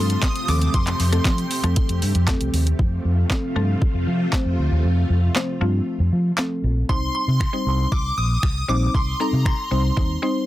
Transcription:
0.00 0.15 G2 medium
0.00 2.75 C3 medium
0.00 0.23 F3 medium
0.00 0.23 A3 medium
0.00 2.75 A3 medium
0.00 0.23 C4 medium
0.00 0.44 F4 medium
0.00 0.23 A4 medium
0.00 0.24 C6 medium
0.10 closed hi-hat soft
0.22 0.49 D#6 medium
0.22 kick loud
0.22 snare medium
0.22 clap loud
0.22 closed hi-hat medium
0.36 closed hi-hat medium
0.48 0.67 D#2 loud
0.48 0.81 F3 medium
0.48 0.81 A3 medium
0.48 0.81 C4 medium
0.48 2.77 G4 medium
0.48 0.81 A4 medium
0.48 0.60 D6 medium
0.48 open hi-hat medium
0.62 closed hi-hat soft
0.74 0.92 F2 loud
0.74 1.73 C6 medium
0.74 kick loud
0.74 closed hi-hat medium
0.87 clap medium
0.87 closed hi-hat medium
1.00 1.18 F2 loud
1.00 open hi-hat medium
1.12 1.39 F3 medium
1.12 1.39 A3 medium
1.12 1.39 C4 medium
1.12 1.39 A4 medium
1.12 closed hi-hat medium
1.25 1.43 F3 loud
1.25 kick loud
1.25 snare medium
1.25 clap loud
1.25 closed hi-hat medium
1.38 closed hi-hat soft
1.51 open hi-hat medium
1.63 1.73 F2 medium
1.63 1.96 F3 loud
1.63 1.96 A3 medium
1.63 1.97 C4 medium
1.63 1.97 A4 loud
1.63 closed hi-hat soft
1.76 kick loud
1.76 closed hi-hat medium
1.89 1.98 F2 medium
1.89 closed hi-hat medium
2.02 2.11 G2 medium
2.02 open hi-hat medium
2.15 2.33 F2 medium
2.15 closed hi-hat soft
2.28 2.54 F3 loud
2.28 2.54 A3 medium
2.28 2.54 C4 medium
2.28 2.54 A4 loud
2.28 kick loud
2.28 snare medium
2.28 clap loud
2.28 closed hi-hat medium
2.41 2.50 C2 medium
2.41 closed hi-hat medium
2.53 2.72 D#2 loud
2.53 open hi-hat medium
2.67 closed hi-hat soft
2.79 2.97 F2 loud
2.79 6.85 C3 medium
2.79 6.85 A3 medium
2.79 6.85 F4 medium
2.79 kick loud
3.05 3.23 F2 loud
3.30 3.43 F3 loud
3.30 3.43 A3 medium
3.30 3.43 C4 medium
3.30 3.44 A4 loud
3.30 kick loud
3.30 snare medium
3.30 clap loud
3.56 3.74 G2 medium
3.56 3.95 F3 medium
3.56 3.95 A3 medium
3.56 3.95 C4 medium
3.56 3.95 A4 loud
3.82 kick loud
3.94 4.04 F2 medium
4.07 4.25 F3 loud
4.33 4.85 F3 medium
4.33 4.85 A3 medium
4.33 4.85 C4 medium
4.33 4.86 C5 loud
4.33 kick loud
4.33 snare medium
4.33 clap loud
4.46 4.55 F2 medium
4.59 4.68 D2 medium
4.71 4.81 D#2 medium
4.84 5.02 F2 loud
5.10 5.28 F2 loud
5.35 5.48 F3 loud
5.35 5.49 A3 medium
5.35 5.49 C4 medium
5.35 5.49 C5 loud
5.35 snare medium
5.35 clap loud
5.61 5.79 G2 medium
5.61 6.00 F3 medium
5.61 6.00 A3 medium
5.61 6.01 C4 medium
5.61 6.01 F4 loud
6.00 6.09 F2 medium
6.12 6.31 F3 medium
6.38 6.89 F3 medium
6.38 6.89 A3 medium
6.38 6.88 C4 medium
6.38 6.89 A4 loud
6.38 snare medium
6.38 clap loud
6.64 6.82 A#1 loud
6.89 7.07 C2 loud
6.89 7.22 G3 medium
6.89 7.22 C4 medium
6.89 7.22 D#4 medium
6.89 7.22 C5 medium
6.89 7.14 C6 medium
6.89 kick loud
7.15 7.94 C6 medium
7.28 7.46 C3 medium
7.40 finger snap loud
7.40 kick loud
7.53 8.06 G3 medium
7.53 8.06 C4 medium
7.53 8.06 D#4 medium
7.53 8.06 C5 medium
7.66 7.84 C2 medium
7.92 8.10 C2 medium
7.92 8.18 D6 medium
7.92 kick loud
8.18 8.36 A#1 medium
8.18 8.65 D#6 loud
8.43 8.61 C2 medium
8.43 finger snap loud
8.43 kick loud
8.68 8.87 A#1 loud
8.68 8.95 G3 medium
8.68 8.95 C4 medium
8.68 8.95 D#4 medium
8.68 8.95 C5 medium
8.68 8.81 D6 medium
8.94 9.13 C2 loud
8.94 9.21 C6 medium
8.94 kick loud
9.20 9.46 G3 medium
9.20 9.46 C4 medium
9.20 9.46 D#4 medium
9.20 9.46 A4 medium
9.20 9.44 A#5 medium
9.33 9.51 C3 loud
9.46 10.46 C6 medium
9.46 finger snap loud
9.46 kick loud
9.71 9.90 C2 medium
9.71 9.84 G3 medium
9.71 9.84 C4 medium
9.71 9.85 D#4 medium
9.71 9.85 C5 medium
9.97 10.15 D#2 medium
9.97 10.10 G3 medium
9.97 10.10 C4 medium
9.97 10.10 D#4 medium
9.97 10.10 C5 medium
9.97 kick loud
10.22 10.46 G3 loud
10.22 10.46 C4 medium
10.22 10.46 D#4 medium
10.22 10.46 C5 loud

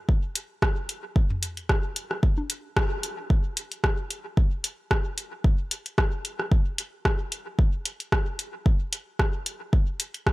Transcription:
0.09 kick loud
0.35 closed hi-hat medium
0.62 kick loud
0.62 cross-stick medium
0.89 closed hi-hat medium
1.16 kick loud
1.30 mid tom medium
1.43 closed hi-hat medium
1.57 closed hi-hat soft
1.69 kick loud
1.69 cross-stick medium
1.96 closed hi-hat medium
2.11 cross-stick soft
2.23 kick loud
2.38 high conga medium
2.50 closed hi-hat medium
2.77 kick loud
2.77 cross-stick medium
3.03 closed hi-hat medium
3.30 kick loud
3.57 closed hi-hat medium
3.72 closed hi-hat soft
3.84 kick loud
3.84 cross-stick medium
4.11 closed hi-hat medium
4.37 kick loud
4.64 closed hi-hat medium
4.91 kick loud
4.91 cross-stick medium
5.18 closed hi-hat medium
5.44 kick loud
5.71 closed hi-hat medium
5.86 closed hi-hat soft
5.98 kick loud
5.98 cross-stick medium
6.25 closed hi-hat medium
6.39 cross-stick soft
6.52 kick loud
6.78 closed hi-hat medium
7.05 kick loud
7.05 cross-stick medium
7.32 closed hi-hat medium
7.59 kick loud
7.85 closed hi-hat medium
8.00 closed hi-hat soft
8.12 kick loud
8.12 cross-stick medium
8.39 closed hi-hat medium
8.66 kick loud
8.93 closed hi-hat loud
9.19 kick loud
9.19 cross-stick medium
9.46 closed hi-hat medium
9.73 kick loud
10.00 closed hi-hat medium
10.14 closed hi-hat soft
10.27 kick loud
10.27 cross-stick medium

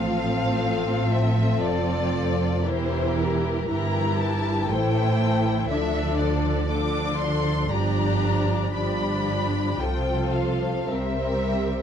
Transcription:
0.00 1.60 A1 medium
0.00 1.59 A2 medium
0.00 2.63 F3 medium
0.00 2.63 C4 medium
0.00 2.63 F4 medium
0.00 2.63 A4 medium
0.00 1.09 F5 medium
1.12 1.64 E5 medium
1.64 2.67 F1 medium
1.64 2.67 F2 medium
1.64 2.67 D5 medium
2.67 3.70 E1 medium
2.67 3.70 E2 medium
2.67 3.70 E3 medium
2.67 3.68 E4 medium
2.67 3.67 G4 medium
2.67 3.69 A#4 medium
2.67 3.19 C5 medium
3.17 3.68 A#4 medium
3.69 4.69 G1 medium
3.69 4.68 G2 medium
3.69 4.69 E3 medium
3.69 4.68 E4 medium
3.69 4.69 G4 medium
3.69 4.69 A#4 medium
3.69 4.19 A#5 medium
4.19 4.70 A5 medium
4.69 5.70 A1 medium
4.69 5.70 A2 medium
4.69 5.69 E3 medium
4.69 5.69 E4 medium
4.69 5.69 A4 medium
4.69 5.71 C5 medium
4.69 5.69 G5 medium
5.68 7.68 D2 medium
5.68 7.67 D3 medium
5.68 6.71 F3 medium
5.68 6.71 D4 medium
5.68 6.68 A4 medium
5.68 6.68 D5 soft
5.68 6.18 E5 medium
6.19 6.69 D5 medium
6.68 7.70 F3 medium
6.68 7.70 D4 medium
6.68 7.69 A4 soft
6.68 7.69 D5 soft
6.68 7.20 D6 medium
7.17 7.70 C6 medium
7.69 8.73 G1 medium
7.69 8.74 G2 soft
7.69 8.73 G4 medium
7.69 8.72 D5 medium
7.69 8.74 A#5 medium
7.73 8.73 F3 medium
7.73 8.74 D4 medium
8.73 9.78 G1 soft
8.73 9.78 G2 soft
8.73 9.79 F3 soft
8.73 9.79 D4 soft
8.73 9.78 G4 soft
8.73 9.78 D5 soft
8.73 9.78 B5 medium
9.79 10.87 C2 soft
9.79 10.88 C3 soft
9.79 10.88 F3 soft
9.79 10.90 F4 soft
9.79 10.89 A4 soft
9.79 10.88 C5 soft
9.79 10.34 G5 medium
10.33 10.88 F5 soft
10.89 11.82 C2 soft
10.89 11.82 C3 soft
10.89 11.82 G3 soft
10.89 11.82 C4 soft
10.89 11.82 A#4 soft
10.89 11.82 C5 soft
10.89 11.82 E5 medium

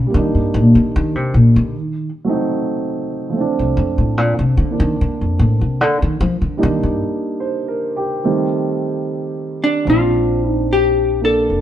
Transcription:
0.00 0.14 G#3 soft
0.00 0.11 C#4 soft
0.00 0.13 D4 soft
0.00 0.15 F4 soft
0.06 1.71 G3 soft
0.06 1.73 A#3 soft
0.14 0.34 D#3 medium
0.14 1.75 D4 soft
0.18 1.77 D#4 soft
0.35 0.56 G2 medium
0.54 0.73 A#2 medium
0.75 0.90 D3 medium
0.96 1.15 D#3 medium
1.15 1.34 C3 medium
1.34 1.53 A#2 medium
1.56 1.77 D3 medium
1.77 2.08 D#3 medium
2.25 3.34 F#3 soft
2.25 3.31 A3 soft
2.25 3.35 C4 soft
2.29 3.37 D#4 soft
3.29 6.56 F3 soft
3.29 6.58 A3 soft
3.36 6.60 C4 soft
3.36 4.71 D4 soft
3.59 3.76 C2 medium
3.77 3.96 F2 medium
3.98 4.18 A2 medium
4.18 4.38 A#2 medium
4.39 4.57 C3 medium
4.57 4.77 D3 medium
4.70 6.56 A#3 soft
4.70 6.57 D4 soft
4.80 4.95 D#3 loud
5.01 5.21 D3 medium
5.21 5.39 F2 medium
5.39 5.58 A2 medium
5.61 5.81 C3 medium
5.81 6.02 D3 medium
6.02 6.20 D#3 medium
6.21 6.40 F3 loud
6.42 6.57 D3 medium
6.57 8.21 G3 soft
6.57 8.21 A#3 soft
6.57 8.22 D4 soft
6.57 8.22 D#4 soft
6.63 6.83 D#3 medium
6.83 7.00 G2 medium
7.40 7.90 C5 soft
7.68 8.10 A#4 medium
7.96 8.38 G4 medium
8.24 9.88 D#3 medium
8.24 9.87 G3 medium
8.24 9.87 A3 soft
8.24 9.86 C4 soft
9.64 9.89 D4 medium
9.85 11.46 A#1 medium
9.85 11.61 F3 soft
9.85 11.61 C4 soft
9.90 11.22 D4 medium
9.90 10.50 F4 medium
10.50 10.72 D#4 medium
10.73 11.20 G4 medium
11.21 11.61 A#3 soft
11.21 11.61 D4 soft
11.21 11.61 A4 medium
11.50 11.61 F1 medium

